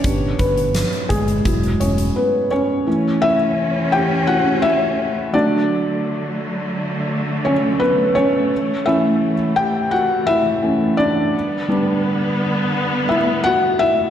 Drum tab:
HH |x-xxxxxxxxxx----|----------------|----------------|----------------|
SD |----o-----------|----------------|----------------|----------------|
BD |o-o---o-o-------|----------------|----------------|----------------|

HH |----------------|
SD |----------------|
BD |----------------|